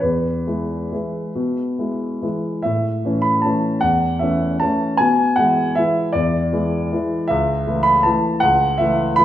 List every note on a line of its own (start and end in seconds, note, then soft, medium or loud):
0.01 0.46 E2 soft
0.01 2.22 B4 soft
0.47 0.88 G#3 soft
0.47 0.88 E4 soft
0.92 1.32 E3 soft
0.92 1.32 G#3 soft
0.92 1.32 E4 soft
1.35 1.77 B2 soft
1.79 2.19 G#3 soft
1.79 2.19 E4 soft
2.22 2.62 E3 soft
2.22 2.62 G#3 soft
2.22 2.62 E4 soft
2.62 3.03 A2 soft
2.62 3.23 E5 medium
3.05 3.41 E3 soft
3.05 3.41 A3 soft
3.05 3.41 C#4 soft
3.22 3.43 B5 medium
3.42 3.79 E3 soft
3.42 3.79 A3 soft
3.42 3.80 C#4 soft
3.42 3.82 A5 medium
3.81 4.20 E2 soft
3.81 4.20 F#5 medium
4.19 4.57 E3 soft
4.19 4.57 A3 soft
4.19 4.58 C#4 soft
4.19 4.60 E5 medium
4.60 4.96 E3 soft
4.60 4.96 A3 soft
4.60 4.96 C#4 soft
4.60 4.99 A5 medium
4.97 5.37 B2 soft
4.97 5.37 G#5 medium
5.36 5.73 E3 soft
5.36 5.73 G#3 soft
5.36 5.73 E4 soft
5.36 5.76 F#5 medium
5.75 6.11 E3 soft
5.75 6.12 G#3 soft
5.75 6.12 E4 soft
5.75 6.14 E5 medium
6.13 6.52 E2 soft
6.13 7.29 D5 medium
6.52 6.88 E3 soft
6.52 6.88 G#3 soft
6.52 6.88 E4 soft
6.92 7.26 E3 soft
6.92 7.26 G#3 soft
6.92 7.27 E4 soft
7.28 7.66 C#2 medium
7.28 7.85 E5 medium
7.67 8.02 E3 soft
7.67 8.02 A3 soft
7.67 8.02 E4 soft
7.83 8.04 B5 medium
8.03 8.39 E3 soft
8.03 8.39 A3 soft
8.03 8.40 E4 soft
8.03 8.42 A5 medium
8.40 8.80 C#2 medium
8.40 8.80 F#5 medium
8.78 9.15 E3 soft
8.78 9.15 A3 soft
8.78 9.15 E4 soft
8.78 9.18 E5 medium
9.16 9.25 E3 soft
9.16 9.25 A3 soft
9.16 9.25 E4 soft
9.16 9.25 B5 medium